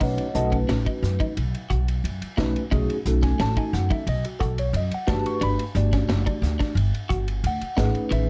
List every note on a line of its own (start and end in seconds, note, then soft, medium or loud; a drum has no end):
0.00 0.16 B1 loud
0.00 0.26 A3 medium
0.00 0.26 C#4 medium
0.00 0.18 D#4 medium
0.00 0.26 D#4 medium
0.00 0.26 F#4 medium
0.00 0.26 B4 medium
0.00 0.35 C#5 soft
0.00 0.34 D#5 soft
0.00 0.35 F#5 medium
0.00 kick medium
0.00 ride medium
0.00 splash medium
0.18 ride medium
0.34 0.64 B1 medium
0.34 1.31 A3 medium
0.34 1.31 C#4 medium
0.34 1.31 D#4 medium
0.34 1.32 F#4 medium
0.34 0.56 A4 medium
0.34 1.32 B4 medium
0.34 0.56 D#5 medium
0.34 0.56 F#5 medium
0.34 0.56 A5 medium
0.34 hi-hat pedal medium
0.52 0.60 C#4 medium
0.52 kick medium
0.52 ride medium
0.69 0.84 A1 medium
0.69 0.78 C#4 medium
0.69 snare loud
0.69 ride medium
0.86 1.03 D#4 medium
0.86 kick medium
0.86 ride medium
1.03 1.18 F#2 medium
1.03 snare soft
1.03 hi-hat pedal medium
1.20 1.37 D#4 medium
1.20 kick medium
1.20 ride medium
1.37 1.52 B1 medium
1.37 ride medium
1.55 ride medium
1.70 2.00 B1 medium
1.70 1.87 F#4 medium
1.70 kick medium
1.70 hi-hat pedal medium
1.88 ride medium
2.04 2.19 F#2 medium
2.04 ride medium
2.22 muted upright bass stroke soft
2.22 ride medium
2.37 2.53 B1 medium
2.37 2.62 A3 medium
2.37 2.62 C#4 medium
2.37 2.54 D#4 medium
2.37 2.62 D#4 medium
2.37 2.63 F#4 medium
2.37 2.62 B4 medium
2.37 kick medium
2.37 snare loud
2.37 hi-hat pedal medium
2.56 ride medium
2.71 2.87 B1 loud
2.71 2.96 A3 medium
2.71 2.96 C#4 medium
2.71 2.88 D#4 loud
2.71 2.96 D#4 medium
2.71 2.97 F#4 medium
2.71 2.97 G#4 medium
2.71 kick loud
2.71 ride medium
2.90 ride medium
3.05 3.35 B1 medium
3.05 4.03 A3 medium
3.05 4.02 C#4 medium
3.05 4.03 D#4 medium
3.05 4.03 F#4 medium
3.05 4.03 A4 medium
3.05 hi-hat pedal medium
3.23 3.31 C#4 medium
3.23 3.39 G#5 medium
3.23 kick medium
3.23 snare soft
3.23 ride medium
3.40 3.54 A1 medium
3.40 3.48 C#4 medium
3.40 3.57 A5 medium
3.40 snare loud
3.40 ride medium
3.57 3.74 D#4 medium
3.57 3.73 G#5 medium
3.57 kick medium
3.57 ride medium
3.73 3.88 F#2 medium
3.73 3.90 F#5 medium
3.73 snare soft
3.73 hi-hat pedal medium
3.90 4.07 D#4 medium
3.90 4.07 E5 medium
3.90 muted upright bass stroke soft
3.90 kick medium
3.90 ride medium
4.07 4.22 B1 medium
4.07 4.25 D#5 loud
4.07 ride medium
4.25 4.41 F#4 medium
4.25 ride medium
4.40 4.70 B1 medium
4.40 4.57 F#4 medium
4.40 4.57 A4 medium
4.40 kick medium
4.40 hi-hat pedal medium
4.58 4.75 C#5 medium
4.58 ride medium
4.73 4.89 F#2 medium
4.73 4.92 D#5 medium
4.73 ride medium
4.91 5.09 F#5 medium
4.91 muted upright bass stroke soft
4.91 ride medium
5.07 5.23 G1 medium
5.07 5.62 A3 medium
5.07 5.62 D4 medium
5.07 5.25 D4 medium
5.07 5.62 F#4 medium
5.07 5.62 G4 medium
5.07 5.63 B4 medium
5.07 5.25 A5 loud
5.07 kick loud
5.07 snare loud
5.07 hi-hat pedal medium
5.26 5.42 C#6 medium
5.26 ride medium
5.41 5.56 G1 loud
5.41 5.58 D4 medium
5.41 5.63 B5 loud
5.41 ride medium
5.59 ride medium
5.75 6.04 G1 loud
5.75 6.72 A3 medium
5.75 6.71 D4 medium
5.75 6.72 F#4 medium
5.75 6.72 G4 medium
5.75 6.72 D5 medium
5.75 hi-hat pedal medium
5.93 6.01 C#4 medium
5.93 kick medium
5.93 snare soft
5.93 ride medium
6.09 6.24 F#1 medium
6.09 6.18 C#4 medium
6.09 snare loud
6.09 ride medium
6.26 6.43 D4 medium
6.26 kick medium
6.26 ride medium
6.42 6.57 D2 loud
6.42 snare soft
6.42 hi-hat pedal medium
6.59 6.76 D4 medium
6.59 muted upright bass stroke soft
6.59 kick medium
6.59 snare soft
6.59 ride medium
6.75 6.91 G1 medium
6.75 ride medium
6.94 ride medium
7.09 7.39 G1 medium
7.09 7.26 F#4 medium
7.09 kick medium
7.09 hi-hat pedal medium
7.28 ride medium
7.44 7.59 D2 loud
7.44 8.09 F#5 medium
7.44 ride medium
7.61 muted upright bass stroke soft
7.61 ride medium
7.77 7.93 A1 medium
7.77 8.30 A3 medium
7.77 8.30 C#4 medium
7.77 7.94 D#4 medium
7.77 8.30 D#4 medium
7.77 8.30 G#4 medium
7.77 8.30 B4 medium
7.77 kick loud
7.77 snare loud
7.77 hi-hat pedal medium
7.95 ride medium
8.11 8.26 A1 loud
8.11 8.28 D#3 loud
8.11 8.30 E5 medium
8.11 ride medium